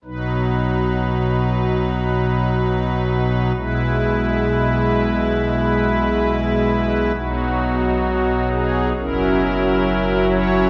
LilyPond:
<<
  \new Staff \with { instrumentName = "Pipe organ" } { \time 4/4 \key b \major \tempo 4 = 67 r1 | r1 | fis'4. gis'8 ais'4. cis''8 | }
  \new Staff \with { instrumentName = "Pipe organ" } { \clef bass \time 4/4 \key b \major <b,, b, fis dis' b'>1 | <b,, b, gis e' b'>1 | <b,, b, fis dis'>2 <fis,, fis, fis cis' e'>2 | }
>>